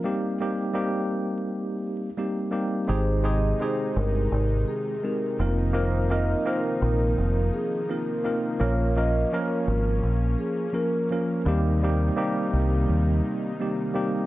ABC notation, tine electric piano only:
X:1
M:4/4
L:1/8
Q:"Swing 16ths" 1/4=84
K:Ebmix
V:1 name="Tine electric piano"
[G,B,CEG] [G,B,CEG] [G,B,CEG]4 [G,B,CEG] [G,B,CEG] | [A,CEGA] [A,CEGA] [A,CEGA]4 [A,CEGA] [B,CEFB] | [B,CEFB] [B,CEFB] [B,CEFB]4 [B,CEFB] [B,CEFB] | [F,B,DFB] [F,B,DFB] [F,B,DFB]4 [F,B,DFB] [F,B,DFB] |
[G,B,CEG] [G,B,CEG] [G,B,CEG]4 [G,B,CEG] [G,B,CEG] |]